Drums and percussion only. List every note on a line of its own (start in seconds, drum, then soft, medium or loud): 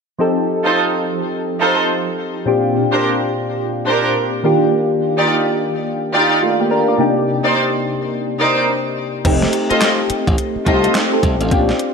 9.25 kick loud
9.25 closed hi-hat medium
9.25 crash medium
9.42 snare medium
9.53 closed hi-hat medium
9.71 closed hi-hat medium
9.81 snare loud
9.81 clap medium
9.81 closed hi-hat medium
10.10 closed hi-hat medium
10.27 kick medium
10.27 closed hi-hat soft
10.38 closed hi-hat medium
10.66 kick medium
10.66 closed hi-hat medium
10.84 closed hi-hat medium
10.95 snare loud
10.95 clap medium
10.95 closed hi-hat medium
11.23 kick medium
11.23 closed hi-hat medium
11.41 closed hi-hat soft
11.51 kick loud
11.51 closed hi-hat medium
11.69 snare medium
11.79 closed hi-hat medium